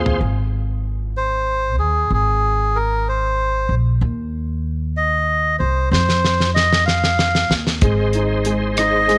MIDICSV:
0, 0, Header, 1, 6, 480
1, 0, Start_track
1, 0, Key_signature, -4, "major"
1, 0, Tempo, 634249
1, 160, Time_signature, 6, 3, 24, 8
1, 6947, End_track
2, 0, Start_track
2, 0, Title_t, "Tonewheel organ"
2, 0, Program_c, 0, 16
2, 0, Note_on_c, 0, 68, 61
2, 0, Note_on_c, 0, 72, 55
2, 0, Note_on_c, 0, 77, 61
2, 0, Note_on_c, 0, 84, 77
2, 149, Note_off_c, 0, 77, 0
2, 150, Note_off_c, 0, 84, 0
2, 151, Note_off_c, 0, 72, 0
2, 153, Note_off_c, 0, 68, 0
2, 5918, Note_on_c, 0, 75, 56
2, 5920, Note_on_c, 0, 68, 57
2, 5920, Note_on_c, 0, 72, 51
2, 5920, Note_on_c, 0, 84, 58
2, 6947, Note_off_c, 0, 68, 0
2, 6947, Note_off_c, 0, 72, 0
2, 6947, Note_off_c, 0, 75, 0
2, 6947, Note_off_c, 0, 84, 0
2, 6947, End_track
3, 0, Start_track
3, 0, Title_t, "Melodica"
3, 0, Program_c, 1, 22
3, 887, Note_on_c, 1, 72, 86
3, 1333, Note_off_c, 1, 72, 0
3, 1355, Note_on_c, 1, 68, 75
3, 1603, Note_off_c, 1, 68, 0
3, 1615, Note_on_c, 1, 68, 82
3, 2087, Note_on_c, 1, 70, 84
3, 2102, Note_off_c, 1, 68, 0
3, 2331, Note_off_c, 1, 70, 0
3, 2336, Note_on_c, 1, 72, 76
3, 2838, Note_off_c, 1, 72, 0
3, 3760, Note_on_c, 1, 75, 79
3, 4210, Note_off_c, 1, 75, 0
3, 4232, Note_on_c, 1, 72, 74
3, 4459, Note_off_c, 1, 72, 0
3, 4475, Note_on_c, 1, 72, 87
3, 4927, Note_off_c, 1, 72, 0
3, 4954, Note_on_c, 1, 75, 93
3, 5180, Note_off_c, 1, 75, 0
3, 5192, Note_on_c, 1, 77, 85
3, 5706, Note_off_c, 1, 77, 0
3, 6644, Note_on_c, 1, 75, 85
3, 6947, Note_off_c, 1, 75, 0
3, 6947, End_track
4, 0, Start_track
4, 0, Title_t, "Upright piano"
4, 0, Program_c, 2, 0
4, 0, Control_c, 2, 64, 127
4, 0, Note_on_c, 2, 53, 58
4, 0, Note_on_c, 2, 60, 59
4, 0, Note_on_c, 2, 65, 54
4, 0, Note_on_c, 2, 77, 80
4, 0, Note_on_c, 2, 80, 67
4, 142, Note_off_c, 2, 53, 0
4, 149, Note_off_c, 2, 80, 0
4, 154, Note_off_c, 2, 60, 0
4, 159, Note_off_c, 2, 65, 0
4, 171, Control_c, 2, 64, 0
4, 177, Note_off_c, 2, 77, 0
4, 302, Control_c, 2, 64, 127
4, 3051, Control_c, 2, 64, 0
4, 5932, Note_on_c, 2, 56, 55
4, 6046, Control_c, 2, 64, 127
4, 6168, Note_on_c, 2, 63, 43
4, 6391, Note_off_c, 2, 56, 0
4, 6402, Note_on_c, 2, 56, 55
4, 6639, Note_off_c, 2, 63, 0
4, 6651, Note_on_c, 2, 63, 46
4, 6863, Note_off_c, 2, 56, 0
4, 6874, Note_on_c, 2, 56, 60
4, 6947, Note_off_c, 2, 56, 0
4, 6947, Note_off_c, 2, 63, 0
4, 6947, End_track
5, 0, Start_track
5, 0, Title_t, "Upright bass"
5, 0, Program_c, 3, 32
5, 0, Note_on_c, 3, 39, 80
5, 146, Note_off_c, 3, 39, 0
5, 156, Note_on_c, 3, 32, 85
5, 1353, Note_off_c, 3, 32, 0
5, 1353, Note_on_c, 3, 39, 74
5, 1582, Note_off_c, 3, 39, 0
5, 1593, Note_on_c, 3, 32, 86
5, 2767, Note_off_c, 3, 32, 0
5, 2792, Note_on_c, 3, 34, 76
5, 3022, Note_off_c, 3, 34, 0
5, 3037, Note_on_c, 3, 39, 95
5, 4209, Note_off_c, 3, 39, 0
5, 4239, Note_on_c, 3, 36, 74
5, 4465, Note_off_c, 3, 36, 0
5, 4477, Note_on_c, 3, 41, 92
5, 5648, Note_off_c, 3, 41, 0
5, 5673, Note_on_c, 3, 39, 71
5, 5902, Note_off_c, 3, 39, 0
5, 5917, Note_on_c, 3, 32, 82
5, 6947, Note_off_c, 3, 32, 0
5, 6947, End_track
6, 0, Start_track
6, 0, Title_t, "Drums"
6, 45, Note_on_c, 9, 43, 72
6, 121, Note_off_c, 9, 43, 0
6, 4490, Note_on_c, 9, 38, 49
6, 4566, Note_off_c, 9, 38, 0
6, 4608, Note_on_c, 9, 38, 43
6, 4683, Note_off_c, 9, 38, 0
6, 4727, Note_on_c, 9, 38, 53
6, 4802, Note_off_c, 9, 38, 0
6, 4846, Note_on_c, 9, 38, 48
6, 4922, Note_off_c, 9, 38, 0
6, 4967, Note_on_c, 9, 38, 59
6, 5043, Note_off_c, 9, 38, 0
6, 5090, Note_on_c, 9, 38, 64
6, 5166, Note_off_c, 9, 38, 0
6, 5205, Note_on_c, 9, 38, 63
6, 5281, Note_off_c, 9, 38, 0
6, 5325, Note_on_c, 9, 38, 61
6, 5401, Note_off_c, 9, 38, 0
6, 5442, Note_on_c, 9, 38, 78
6, 5517, Note_off_c, 9, 38, 0
6, 5562, Note_on_c, 9, 38, 63
6, 5638, Note_off_c, 9, 38, 0
6, 5682, Note_on_c, 9, 38, 72
6, 5757, Note_off_c, 9, 38, 0
6, 5803, Note_on_c, 9, 38, 68
6, 5878, Note_off_c, 9, 38, 0
6, 5914, Note_on_c, 9, 42, 94
6, 5917, Note_on_c, 9, 36, 101
6, 5990, Note_off_c, 9, 42, 0
6, 5993, Note_off_c, 9, 36, 0
6, 6153, Note_on_c, 9, 42, 45
6, 6229, Note_off_c, 9, 42, 0
6, 6393, Note_on_c, 9, 42, 56
6, 6469, Note_off_c, 9, 42, 0
6, 6637, Note_on_c, 9, 42, 70
6, 6643, Note_on_c, 9, 37, 89
6, 6713, Note_off_c, 9, 42, 0
6, 6719, Note_off_c, 9, 37, 0
6, 6879, Note_on_c, 9, 42, 40
6, 6884, Note_on_c, 9, 37, 32
6, 6947, Note_off_c, 9, 37, 0
6, 6947, Note_off_c, 9, 42, 0
6, 6947, End_track
0, 0, End_of_file